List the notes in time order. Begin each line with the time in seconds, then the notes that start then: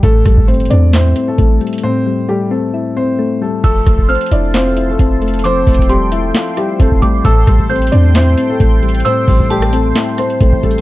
0.03 A1 A2 A3 A4, kick, closed hi-hat
0.25 A1 G3, kick, cross-stick, closed hi-hat
0.37 G1, kick
0.48 A3 C4 C5, closed hi-hat
0.54 closed hi-hat
0.60 closed hi-hat
0.65 closed hi-hat
0.70 E2 C4 D4 D5, closed hi-hat
0.93 C4 E4 C5, snare, clap, closed hi-hat
1.16 C4, closed hi-hat
1.28 A3 A4
1.38 A1 A3, kick, closed hi-hat
1.61 G3, closed hi-hat
1.67 closed hi-hat
1.73 closed hi-hat
1.78 closed hi-hat
1.83 A2 C4 C5
2.06 G3
2.29 G3 A3 G4
2.51 A3 C4 A4
2.74 E4
2.96 C4 C5
3.19 A3
3.42 G3 A3 A4
3.64 F1 F3 A3 A4 C5 A5 C6 E6, kick, closed hi-hat, crash
3.86 F1 A3, kick, cross-stick, closed hi-hat
3.98 kick
4.09 C4 C5 F6, closed hi-hat
4.15 closed hi-hat
4.21 closed hi-hat
4.26 closed hi-hat
4.31 F1 D4 E4 D5, closed hi-hat
4.54 C4 F4 C5, snare, clap, closed hi-hat
4.77 E4, closed hi-hat
4.89 A3 A4
4.99 F1 C4, kick, closed hi-hat
5.22 A3, closed hi-hat
5.28 closed hi-hat
5.34 closed hi-hat
5.39 closed hi-hat
5.44 F3 C4 C5 G5 D6, closed hi-hat
5.67 E1 A3, kick, closed hi-hat, open hi-hat
5.74 closed hi-hat
5.79 kick, closed hi-hat
5.89 G3 C4 G4 C6, closed hi-hat
6.12 A3 E4 A4, closed hi-hat
6.34 F4, snare, clap, closed hi-hat
6.57 G3 E4 G4, cross-stick, closed hi-hat
6.80 F1 A3 C4 A4, kick, closed hi-hat
6.92 kick
7.02 G3 A3 G4 D6, kick, closed hi-hat
7.25 A1 A2 A3 A4 G5 E6, kick, closed hi-hat
7.47 A1 G3, kick, cross-stick, closed hi-hat
7.59 kick
7.70 A3 C4 C5 G6, closed hi-hat
7.76 closed hi-hat
7.82 closed hi-hat
7.87 closed hi-hat
7.92 E2 C4 D4 D5, closed hi-hat
8.15 C4 E4 C5, snare, clap, closed hi-hat
8.38 C4, closed hi-hat
8.50 A3 A4
8.60 A1 A3, kick, closed hi-hat
8.83 G3, closed hi-hat
8.89 closed hi-hat
8.95 closed hi-hat
9.00 closed hi-hat
9.05 A2 C4 C5 E6, closed hi-hat
9.28 A1 G3, kick, open hi-hat
9.40 kick
9.50 G3 A3 G4 A5, closed hi-hat
9.62 cross-stick
9.73 A3 C4 A4, closed hi-hat
9.95 E4, snare, clap, closed hi-hat
10.18 C4 C5, cross-stick, closed hi-hat
10.30 closed hi-hat
10.41 A1 A3, kick, closed hi-hat
10.53 kick
10.63 G3 A3 A4, kick, closed hi-hat
10.71 closed hi-hat